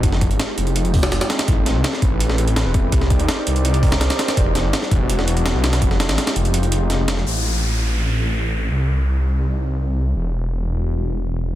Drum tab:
HH |x-xxx-xxxxo-xxxx|x-x-x-x-x-xxx-x-|x-xxx-xxxxo-xxxx|x-x-x-x-x-xxx-xx|
SD |-o--o------ooooo|--o-oo---o--o---|-o--o------ooooo|--o-oo---o--o-oo|
BD |o-o-------o-----|o-----o-------o-|o-o-------o-----|o-----o---------|

HH |x-xxxxxxxxx-x-x-|----------------|----------------|----------------|
SD |-ooooo------o-oo|----------------|----------------|----------------|
BD |o---------------|----------------|----------------|----------------|